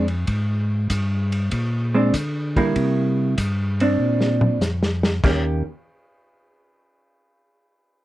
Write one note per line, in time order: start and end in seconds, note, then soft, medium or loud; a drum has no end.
0.00 0.26 F2 medium
0.08 ride soft
0.27 0.88 G#2 medium
0.27 kick soft
0.27 ride medium
0.90 1.50 G2 medium
0.90 kick soft
0.90 hi-hat pedal soft
0.90 ride medium
1.32 ride soft
1.51 2.12 A#2 medium
1.51 kick soft
1.51 ride medium
1.94 2.12 G#3 medium
1.94 2.12 C4 medium
1.94 2.13 D4 medium
2.14 2.74 D3 medium
2.14 kick soft
2.14 hi-hat pedal medium
2.14 ride medium
2.56 3.34 G3 medium
2.56 3.34 A#3 medium
2.56 3.34 E4 medium
2.56 kick soft
2.56 ride soft
2.76 3.36 C3 medium
2.76 kick soft
2.76 ride soft
3.38 3.98 G2 medium
3.38 kick soft
3.38 hi-hat pedal soft
3.38 ride medium
3.80 4.58 C4 medium
3.80 4.59 D4 medium
3.80 ride soft
3.99 4.60 A#2 medium
4.21 snare soft
4.41 mid tom medium
4.61 5.21 F2 medium
4.61 snare medium
4.61 hi-hat pedal soft
4.83 snare medium
5.03 snare medium
5.23 5.63 D#2 medium
5.23 5.62 D#3 medium
5.23 5.62 A#3 medium
5.23 5.62 C#4 medium
5.23 5.62 G4 medium
5.23 kick medium
5.23 snare medium
5.23 crash medium